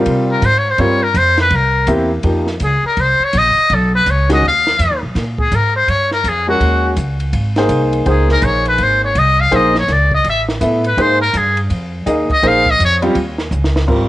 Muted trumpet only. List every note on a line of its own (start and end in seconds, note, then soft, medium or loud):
0.31 0.47 A#4 medium
0.45 0.59 C5 loud
0.58 0.72 C#5 medium
0.70 0.82 C5 medium
0.80 1.05 C#5 medium
1.03 1.20 A#4 medium
1.18 1.40 C5 loud
1.41 1.57 B4 medium
1.55 1.90 A#4 medium
2.64 2.84 G#4 medium
2.86 3.02 A#4 medium
3.00 3.25 C5 medium
3.24 3.39 C#5 medium
3.38 3.76 D#5 loud
3.75 3.94 A4 medium
3.95 4.12 B4 loud
4.10 4.31 C#5 medium
4.33 4.43 D#5 medium
4.47 5.00 F5 medium
5.41 5.56 G#4 medium
5.55 5.75 A#4 medium
5.76 5.91 C5 medium
5.89 6.12 C#5 loud
6.12 6.30 A#4 medium
6.28 6.48 G#4 medium
6.49 6.94 F#4 medium
8.10 8.29 G#4 medium
8.32 8.46 A#4 loud
8.45 8.67 C#5 loud
8.68 8.84 B4 medium
8.83 9.04 C5 medium
9.04 9.20 C#5 medium
9.19 9.42 D#5 loud
9.40 9.57 F5 loud
9.55 9.77 D#5 medium
9.79 9.94 C#5 medium
9.93 10.13 D5 medium
10.14 10.25 D#5 medium
10.29 10.42 E5 medium
10.87 11.03 B4 medium
11.01 11.21 C5 medium
11.21 11.39 A#4 loud
11.37 11.58 G#4 medium
12.32 12.49 D#5 medium
12.47 12.72 F5 loud
12.70 12.81 D#5 loud
12.85 12.97 C#5 loud